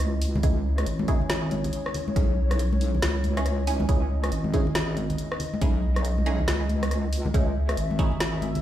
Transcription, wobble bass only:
0.00 0.42 C#2 loud
0.44 0.85 C#2 loud
0.87 1.72 G#1 loud
2.16 3.01 B1 loud
3.03 3.88 C#2 loud
3.89 4.31 C#2 loud
4.32 5.17 G#1 loud
5.62 6.47 B1 medium
6.48 7.33 C#2 loud
7.34 7.76 C#2 loud
7.77 8.62 G#1 loud

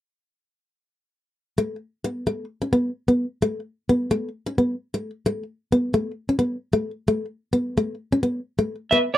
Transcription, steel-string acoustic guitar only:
1.58 1.75 A3 medium
2.04 2.21 B3 medium
2.27 2.44 A3 medium
2.62 2.70 C#4 medium
2.73 2.90 B3 medium
3.08 3.25 B3 medium
3.42 3.59 A3 medium
3.89 4.06 B3 medium
4.11 4.28 A3 medium
4.46 4.54 C#4 medium
4.58 4.74 B3 medium
4.94 5.10 A3 medium
5.26 5.42 A3 medium
5.72 5.89 B3 medium
5.94 6.11 A3 medium
6.29 6.37 C#4 medium
6.39 6.56 B3 medium
6.73 6.90 A3 medium
7.08 7.25 A3 medium
7.53 7.70 B3 medium
7.78 7.94 A3 medium
8.12 8.20 C#4 medium
8.23 8.39 B3 medium
8.59 8.75 A3 medium
8.92 9.08 B3 medium

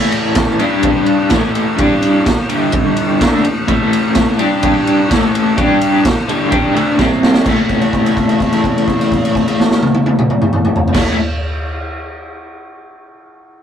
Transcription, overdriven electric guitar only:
0.00 0.58 A2 loud
0.00 0.59 E3 loud
0.00 0.59 A3 loud
0.60 1.30 G3 medium
0.60 1.30 D4 loud
0.60 1.31 G4 loud
1.30 1.77 A2 medium
1.30 1.77 E3 loud
1.30 1.77 A3 loud
1.77 2.24 G3 loud
1.77 2.25 D4 loud
1.77 2.25 G4 loud
2.25 muted overdriven electric guitar stroke medium
2.49 3.20 G2 medium
2.49 3.19 D3 loud
2.49 3.20 G3 loud
3.20 3.43 D3 medium
3.20 3.43 A3 loud
3.20 3.44 D4 loud
3.44 3.63 A2 medium
3.44 3.63 E3 medium
3.67 4.38 A2 medium
3.67 4.38 E3 loud
3.67 4.39 A3 loud
4.38 5.09 G3 loud
4.38 5.09 D4 loud
4.38 5.10 G4 loud
5.09 5.56 A2 loud
5.09 5.56 E3 loud
5.09 5.57 A3 loud
5.56 6.03 G3 medium
5.56 6.04 D4 loud
5.56 6.04 G4 loud
6.04 muted overdriven electric guitar stroke medium
6.29 6.51 G2 loud
6.29 6.51 D3 medium
6.29 6.48 G3 loud
6.49 6.73 G3 loud
6.49 6.74 D4 loud
6.49 6.74 G4 loud
6.75 6.97 D3 medium
6.75 6.98 A3 loud
6.75 6.98 D4 loud
6.98 7.43 C3 medium
6.98 7.45 G3 loud
6.98 7.46 C4 loud
7.44 10.93 A2 medium
7.44 10.94 E3 loud
7.48 10.96 A3 loud
10.93 11.15 A2 medium
10.93 11.16 E3 loud
10.93 11.17 A3 loud

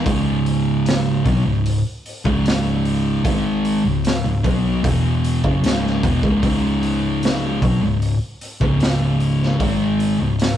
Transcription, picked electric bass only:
0.06 1.22 C#1 medium
1.26 1.44 B1 medium
1.45 1.83 C#1 medium
2.25 3.21 C#1 medium
3.25 3.81 G#1 medium
3.85 4.22 C#1 medium
4.24 4.43 C#1 medium
4.45 4.81 B1 medium
4.84 5.40 E1 medium
5.44 5.62 F#1 medium
5.63 6.00 C#1 medium
6.04 6.22 E1 medium
6.23 6.42 C#1 medium
6.43 7.58 C#1 medium
7.62 7.81 B1 medium
7.82 8.19 C#1 medium
8.61 9.56 C#1 medium
9.60 10.16 G#1 medium
10.20 10.57 C#1 medium

